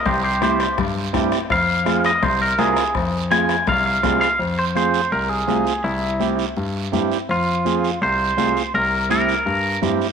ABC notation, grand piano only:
X:1
M:4/4
L:1/8
Q:1/4=166
K:Fm
V:1 name="Grand piano" clef=bass
C,,4 G,,2 G,, z | F,,4 C,,2 C,, z | F,,4 C,,2 C,, z | F,,4 C,,2 C,, z |
C,,4 G,,2 G,, z | F,,4 C,,2 C,, z | C,,4 G,,2 G,, z |]